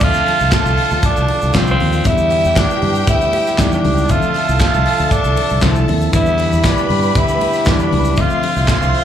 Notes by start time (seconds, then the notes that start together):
0.00 D2 D3 F3 C4 D4 F4 A4 E5 A5, kick, crash, shaker
0.14 shaker
0.26 open hi-hat, muted conga
0.40 C2, shaker
0.51 F4, kick, snare, clap, closed hi-hat, high conga, shaker
0.66 C2, shaker
0.78 open hi-hat
0.90 D2, shaker
1.02 D4, kick, closed hi-hat, muted conga, shaker
1.16 C2, shaker
1.28 open hi-hat, muted conga
1.42 C2, shaker
1.53 C2 D3 F3 C4 F4 F5, kick, snare, clap, closed hi-hat, high conga, shaker
1.67 C4, shaker
1.80 D#2, open hi-hat, high conga
1.93 shaker
2.04 E2 D3 E3 G3 B3 D4 E4 G4 G5, kick, closed hi-hat, shaker
2.18 shaker
2.30 open hi-hat, muted conga
2.45 E2, shaker
2.56 D4, kick, snare, clap, closed hi-hat, high conga, shaker
2.70 shaker
2.82 G2, open hi-hat, low conga
2.95 shaker
3.07 D2 E4, kick, closed hi-hat, muted conga, shaker
3.21 shaker
3.33 open hi-hat, muted conga
3.46 snare, shaker
3.58 E2 D3 G3 B3 D4 D#4, kick, snare, clap, closed hi-hat, high conga, shaker
3.65 E4
3.72 D4, shaker
3.84 C#2, open hi-hat, high conga
3.97 shaker
4.09 D2 D3 E3 F3 C4 F4 A4 E5 A5, kick, closed hi-hat, muted conga, shaker
4.16 F3
4.22 shaker
4.34 open hi-hat, muted conga
4.49 C2, shaker
4.59 F4, kick, snare, clap, closed hi-hat, high conga, shaker
4.74 C2, shaker
4.86 open hi-hat
4.99 D2, shaker
5.11 D4, kick, closed hi-hat, muted conga, shaker
5.24 C2, shaker
5.36 open hi-hat, muted conga
5.50 C2, shaker
5.61 C2 D3 F3 C4 E4, kick, snare, clap, closed hi-hat, high conga, shaker
5.75 shaker
5.88 D#2, open hi-hat, high conga
6.01 shaker
6.12 E2 D3 E3 G3 B3 D4 E4 G4 B4 B5, kick, closed hi-hat, muted conga, shaker
6.26 shaker
6.38 open hi-hat, muted conga
6.53 E2, shaker
6.63 D4, kick, snare, clap, closed hi-hat, high conga, shaker
6.77 shaker
6.90 G2, open hi-hat, low conga
7.02 shaker
7.15 D2 E4, kick, closed hi-hat, muted conga, shaker
7.28 shaker
7.41 open hi-hat, muted conga
7.53 snare, shaker
7.65 E2 D3 G3 B3 D4 E4, kick, snare, clap, closed hi-hat, high conga, shaker
7.79 D4, shaker
7.92 C#2, open hi-hat, high conga
8.05 shaker
8.16 D2 D3 E3 C4 F4 C5 E5 C6, kick, closed hi-hat, shaker
8.20 F3 F4
8.30 shaker
8.43 open hi-hat, muted conga
8.56 C2, shaker
8.67 F4, kick, snare, clap, closed hi-hat, high conga, shaker
8.82 C2, shaker
8.95 open hi-hat